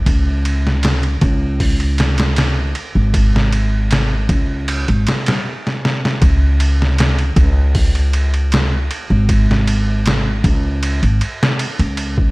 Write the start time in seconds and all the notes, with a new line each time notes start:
0.06 C#2, kick, ride
0.45 ride
0.67 snare
0.83 snare, ride
1.03 ride
1.21 C#2, kick, ride
1.60 kick, open hi-hat
1.80 ride
1.98 snare, ride
2.18 snare, ride
2.36 snare, ride
2.75 ride
2.95 G#1
3.14 kick, ride
3.36 snare
3.52 ride
3.91 snare, ride
4.29 C#2, kick, ride
4.68 ride
4.88 G#1, ride
5.07 snare, ride
5.26 snare, ride
5.67 snare
5.85 snare
6.05 snare
6.22 C#2, kick, ride
6.60 ride
6.82 snare
6.98 snare, ride
7.19 ride
7.36 C#2, kick, ride
7.75 kick, open hi-hat
7.95 ride
8.13 ride
8.34 ride
8.52 snare, ride
8.91 ride
9.10 G#1
9.29 kick, ride
9.51 snare
9.68 ride
10.06 snare, ride
10.44 C#2, kick, ride
10.83 ride
11.03 G#1, ride
11.21 ride
11.43 snare
11.59 ride
11.79 C#2, ride
11.97 ride
12.18 kick